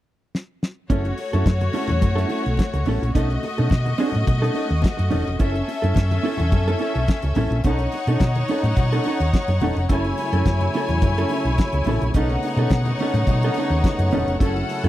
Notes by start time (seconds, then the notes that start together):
0.35 snare
0.63 snare
0.90 F#1 A3 C#4 E4 F#4 A4 C#5, kick, closed hi-hat, muted conga
1.05 muted clean electric guitar stroke, closed hi-hat
1.18 muted clean electric guitar stroke, open hi-hat
1.33 F#2 C#4 E4 A4, closed hi-hat
1.46 F#2, muted clean electric guitar stroke, kick, snare, closed hi-hat, muted conga, high conga
1.61 muted clean electric guitar stroke, closed hi-hat, high conga
1.73 C#4 E4 A4, open hi-hat, muted conga
1.88 E2, muted clean electric guitar stroke, closed hi-hat, low conga
2.01 F#2, muted clean electric guitar stroke, kick, closed hi-hat, muted conga, high conga, low conga
2.15 C#4 E4 A4, closed hi-hat
2.29 C#4 E4 A4, open hi-hat, muted conga
2.44 B1, muted clean electric guitar stroke, closed hi-hat
2.57 muted clean electric guitar stroke, kick, snare, closed hi-hat, muted conga, high conga
2.74 C#2, muted clean electric guitar stroke, closed hi-hat
2.85 A1 C#4 E4 A4, open hi-hat, high conga, low conga
3.02 A#1, muted clean electric guitar stroke, closed hi-hat
3.15 B1 A3 C#4 D#4 F#4 A4 D#5, kick, closed hi-hat
3.30 muted clean electric guitar stroke, closed hi-hat
3.43 muted clean electric guitar stroke, open hi-hat, muted conga
3.58 B2 C#4 D#4 A4, closed hi-hat
3.70 B2, muted clean electric guitar stroke, kick, snare, closed hi-hat, muted conga, high conga
3.86 muted clean electric guitar stroke, closed hi-hat, high conga
3.98 C#4 D#4 A4, open hi-hat, muted conga
4.12 A2, muted clean electric guitar stroke, closed hi-hat, low conga
4.27 B2, muted clean electric guitar stroke, kick, closed hi-hat, high conga, low conga
4.42 C#4 D#4 A4, closed hi-hat
4.54 C#4 D#4 A4, open hi-hat, muted conga
4.69 D#2, muted clean electric guitar stroke, closed hi-hat
4.82 muted clean electric guitar stroke, kick, snare, closed hi-hat, muted conga, high conga
4.97 F#2, muted clean electric guitar stroke, closed hi-hat
5.10 E1 C#4 D#4 A4, open hi-hat, high conga, low conga
5.26 F1, muted clean electric guitar stroke, closed hi-hat
5.39 F#1 C#4 E4 A4 E5, kick, closed hi-hat, muted conga
5.54 muted clean electric guitar stroke, closed hi-hat
5.68 muted clean electric guitar stroke, open hi-hat
5.82 F#2 C#4 E4 A4, closed hi-hat
5.95 F#2, muted clean electric guitar stroke, kick, snare, closed hi-hat, muted conga, high conga
6.11 muted clean electric guitar stroke, closed hi-hat, high conga
6.23 C#4 E4 A4, open hi-hat, muted conga
6.37 E2, muted clean electric guitar stroke, closed hi-hat, low conga
6.52 F#2, muted clean electric guitar stroke, kick, closed hi-hat, muted conga, high conga, low conga
6.68 C#4 E4 A4, closed hi-hat
6.79 C#4 E4 A4, open hi-hat
6.95 B1, muted clean electric guitar stroke, closed hi-hat
7.08 kick, snare, closed hi-hat, muted conga, high conga
7.22 C#2, muted clean electric guitar stroke, closed hi-hat
7.35 A1 C#4 E4 A4, open hi-hat, muted conga, high conga, low conga
7.51 A#1, muted clean electric guitar stroke, closed hi-hat
7.64 B1 C#4 D#4 A4 C#5 F#5, kick, closed hi-hat, muted conga
7.79 muted clean electric guitar stroke, closed hi-hat
7.92 muted clean electric guitar stroke, open hi-hat
8.07 B2 C#4 D#4 A4, closed hi-hat
8.20 B2, muted clean electric guitar stroke, kick, snare, closed hi-hat, muted conga, high conga
8.35 muted clean electric guitar stroke, closed hi-hat, high conga
8.48 C#4 D#4 A4, open hi-hat, muted conga
8.63 A2, muted clean electric guitar stroke, closed hi-hat, low conga
8.76 B2, muted clean electric guitar stroke, kick, closed hi-hat, muted conga, high conga, low conga
8.93 C#4 D#4 A4, closed hi-hat
9.04 C#4 D#4 A4, open hi-hat, muted conga
9.20 D#2, muted clean electric guitar stroke, closed hi-hat
9.33 muted clean electric guitar stroke, kick, snare, closed hi-hat, high conga
9.48 F#2, muted clean electric guitar stroke, closed hi-hat
9.60 E1 C#4 D#4 A4, open hi-hat, muted conga, high conga, low conga
9.76 F1, muted clean electric guitar stroke, closed hi-hat
9.89 F#1 C#3 F#3 A3 C#4 E4 A4 C#5 G#5, kick, closed hi-hat, muted conga
10.05 muted clean electric guitar stroke, closed hi-hat
10.18 muted clean electric guitar stroke, open hi-hat
10.33 F#2 C#4 E4 A4, closed hi-hat
10.46 F#2, muted clean electric guitar stroke, kick, snare, closed hi-hat, muted conga, high conga
10.61 muted clean electric guitar stroke, closed hi-hat, high conga
10.74 C#4 E4 A4, open hi-hat
10.89 E2, muted clean electric guitar stroke, closed hi-hat, low conga
11.02 F#2, muted clean electric guitar stroke, kick, closed hi-hat, muted conga, high conga, low conga
11.18 C#4 E4 A4, closed hi-hat
11.29 C#4 E4, open hi-hat, muted conga
11.33 A4
11.45 B1, muted clean electric guitar stroke, closed hi-hat
11.58 muted clean electric guitar stroke, kick, snare, closed hi-hat, muted conga, high conga
11.72 C#2, muted clean electric guitar stroke, closed hi-hat
11.84 A1 C#4, open hi-hat, muted conga, high conga, low conga
11.88 E4 A4
12.02 A#1, muted clean electric guitar stroke, closed hi-hat
12.13 B1 B3 C#4 D#4 A4 C#5 F#5, kick, closed hi-hat, muted conga
12.30 muted clean electric guitar stroke, closed hi-hat
12.43 muted clean electric guitar stroke, open hi-hat
12.57 B2 C#4 D#4 A4, closed hi-hat
12.70 B2, muted clean electric guitar stroke, kick, snare, closed hi-hat, muted conga, high conga
12.85 muted clean electric guitar stroke, closed hi-hat, high conga
12.99 C#4 D#4, open hi-hat, muted conga
13.03 A4
13.14 A2, muted clean electric guitar stroke, closed hi-hat, low conga
13.27 B2, muted clean electric guitar stroke, kick, closed hi-hat, high conga, low conga
13.43 C#4 D#4 A4, closed hi-hat
13.54 C#4, open hi-hat, muted conga
13.59 D#4 A4
13.70 D#2, muted clean electric guitar stroke, closed hi-hat
13.84 muted clean electric guitar stroke, kick, snare, closed hi-hat, muted conga, high conga
13.99 F#2, muted clean electric guitar stroke, closed hi-hat
14.11 E1 C#4 D#4 A4, open hi-hat, muted conga, high conga, low conga
14.27 F1, muted clean electric guitar stroke, closed hi-hat
14.39 F#1 C#3 F#3 C#4 E4 A4 F#5, kick, closed hi-hat
14.56 muted clean electric guitar stroke, closed hi-hat
14.69 muted clean electric guitar stroke, open hi-hat
14.84 F#2 E4 A4, closed hi-hat